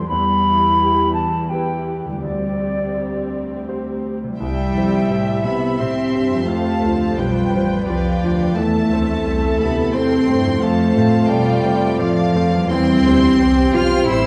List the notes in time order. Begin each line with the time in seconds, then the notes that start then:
Already playing: A2 E3 G3 C4 E4 A4
0.02 G4
0.06 E2 G4 B4 B5
0.10 E2 E4
0.81 G3
1.14 A5
1.49 E4 G4 B4 G5
2.05 D3
2.09 G3
2.14 G4
2.18 D2 D5
2.22 C4 G4
2.96 G3
3.68 G4 C5
4.24 C3
4.28 G3
4.32 E4
4.38 C2 G3 E4 G4 E5 G5
4.75 F2 G3 E4 C5
5.08 A2 G3 E4 C5 E5
5.43 C3 G3 B3 E4 E5 B5
5.78 A2 G3 C4 E4 C5 E5 C6
6.14 G2 G3 E4 C5
6.31 F2
6.35 F3
6.40 F4
6.44 A3 A4 F5 A5
6.48 F2 F4
6.84 D2 F3 F4 C5
7.17 B1 F3 G3 F4 B4 C5 G5
7.54 A1 F3 F4 C5
7.87 C2 F3 F4 C5 D5 F5 G5
8.24 D2 F3 F4 C5
8.38 E2
8.43 A3
8.55 E2 A3 E4 A4 E5 A5
8.92 D2 A3 C4 C5
9.26 C2 A3 C4 C5 A5
9.59 D2 C3 A3 B3 A4 B5
9.93 E2 A3 C4 C5 G5 C6
10.29 G2 A3 C4 C5
10.45 F2
10.50 A3
10.58 F2 A3 C5 F5
10.63 F4 A4 A5
10.95 A2 A3 C4 C5
11.28 B2 G3 A3 F4 C5 D5 G5
11.64 C3 A3 C4 C5
11.97 A2 F3 A3 C4 F4 C5 F5
12.35 F2 A3 C4 C5
12.52 E2
12.57 G3
12.62 C4
12.66 E2 C4 E4 G4 C5 G5
12.71 E2 C5 C6
13.05 D2 G3 C4 C5
13.39 C2 G3 C4 G4 C5 G5
13.73 B1 G3 C4 F4 C5 F6
14.07 A1 G3 C4 E4 G4 C5 C6 E6